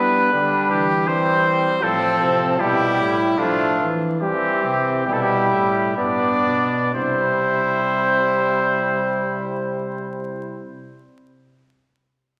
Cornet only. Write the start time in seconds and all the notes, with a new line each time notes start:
Already playing: B4
0.70 G4
1.08 C5
1.83 A4
2.59 G4
3.38 F4
4.21 G4
5.07 G4
5.13 A4
5.22 G4
5.97 D5
6.94 C5